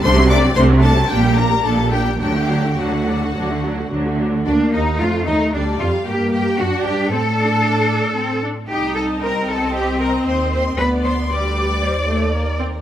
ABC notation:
X:1
M:4/4
L:1/16
Q:1/4=114
K:Gm
V:1 name="Violin section"
c2 d2 c2 A2 G2 B2 A2 G2 | G4 ^F8 z4 | d2 e2 f2 e2 d2 f2 g2 g2 | ^f2 g2 a8- a2 z2 |
g2 a2 b2 a2 g2 b2 c'2 c'2 | =b2 c'2 d'8- d'2 z2 |]
V:2 name="Violin section"
c'2 d'2 c'2 a2 g2 b2 a2 g2 | g4 ^f8 z4 | D2 E2 F2 E2 D2 F2 G2 G2 | ^F2 G2 A8- A2 z2 |
e16 | d4 =B2 B2 c2 c2 _B4 |]
V:3 name="Cello section"
C,4 C,4 B,,4 B,,4 | D,4 D,4 D,4 D,4 | D2 E2 F2 E2 D2 F2 G2 G2 | ^F2 G2 A8- A2 z2 |
G2 A2 B2 A2 G2 B2 c2 c2 | =B2 c2 d8- d2 z2 |]
V:4 name="Viola section"
[A,D] [^F,C] [A,D] [F,C] [A,D] [F,C] [A,D] [F,C] [B,D] [G,B,] [B,D] [G,B,] [B,D] [G,B,] [B,D] [G,B,] | [^F,D] [A,^F] [F,D] [A,F] [F,D] [A,F] [F,D] [A,F] [F,D] [A,F] [F,D] [A,F] [F,D] [A,F] [F,D] [A,F] | B,4 A,4 G,4 B,4 | D4 C2 D6 C2 D2 |
E4 C12 | =B,4 G,4 G,2 A,2 _B,2 C2 |]
V:5 name="Double bass section" clef=bass
C,,4 C,,4 B,,,4 B,,,4 | D,,4 D,,4 D,,4 D,,4 | D,,2 E,,2 F,,2 E,,2 D,,2 F,,2 G,,2 G,,2 | ^F,,2 G,,2 A,,8- A,,2 z2 |
C,,12 E,,4 | D,,8 E,,8 |]